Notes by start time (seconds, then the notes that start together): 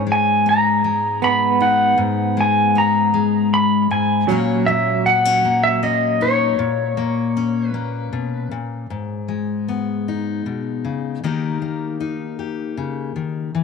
Already playing: G#2 D#4
0.07 G#3
0.12 G#5
0.46 B3 A#5
0.84 G#3
1.22 B3 B5
1.60 D#4 F#5
1.98 G#2
2.37 G#3 G#5
2.75 B3 A#5
3.14 G#3
3.54 B5
3.91 G#2 G#5
4.28 A#2 F#3 A#3 C#4 C#5
4.66 A#3 E5
5.06 B3 F#5
5.25 C#4
5.45 A#3
5.64 E5
5.83 C#4 D#5
6.21 D#4 C#5
6.59 A#2
6.97 A#3
7.37 C#4
7.68 B4
7.74 A#3
8.13 B2
8.51 A#2
8.90 G#2
9.28 G#3
9.68 B3
10.08 D#4
10.46 B2
10.85 C#3
11.24 D#3 A#3 D#4 G4 A#4
11.62 A#3
12.00 D#4
12.39 G4
12.77 C#3
13.16 D#3
13.55 E3